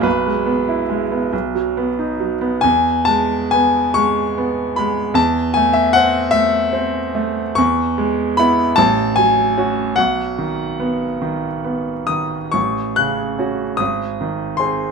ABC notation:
X:1
M:6/8
L:1/16
Q:3/8=49
K:E
V:1 name="Grand piano"
B6 z6 | g2 a2 g2 c'4 b2 | a2 g e f2 e6 | c'4 b2 a2 g4 |
f6 z4 d'2 | [K:F#dor] c'2 f'4 d'4 ^b2 |]
V:2 name="Grand piano" clef=bass
B,,, G, B, E G, B, B,,, F, B, D F, B, | E,,2 G,2 B,2 G,2 B,2 G,2 | E,,2 A,2 =C2 A,2 C2 A,2 | E,,2 G,2 [B,E]2 A,,,2 F,2 [CF]2 |
B,,,2 D,2 B,2 D,2 B,2 D,2 | [K:F#dor] A,,,2 C,2 [CF]2 G,,,2 D,2 [^B,G]2 |]